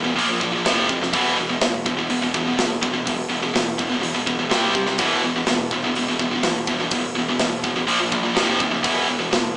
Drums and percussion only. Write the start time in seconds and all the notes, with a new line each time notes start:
0.18 open hi-hat
0.41 kick
0.66 snare, open hi-hat
0.89 kick
1.03 snare
1.13 kick, open hi-hat
1.61 snare, open hi-hat
1.86 kick
2.10 open hi-hat
2.34 kick
2.59 snare, open hi-hat
2.83 kick
3.07 kick, open hi-hat
3.56 snare, open hi-hat
3.79 kick
4.03 open hi-hat
4.27 kick
4.51 snare, open hi-hat
4.75 kick
4.86 snare
4.98 kick, open hi-hat
5.47 snare, open hi-hat
5.71 kick
5.95 open hi-hat
6.19 kick
6.43 snare, open hi-hat
6.67 kick
6.91 kick, open hi-hat
7.39 snare, open hi-hat
7.64 kick
7.88 open hi-hat
8.12 kick
8.36 snare, open hi-hat
8.60 kick
8.84 kick, open hi-hat
9.33 snare, open hi-hat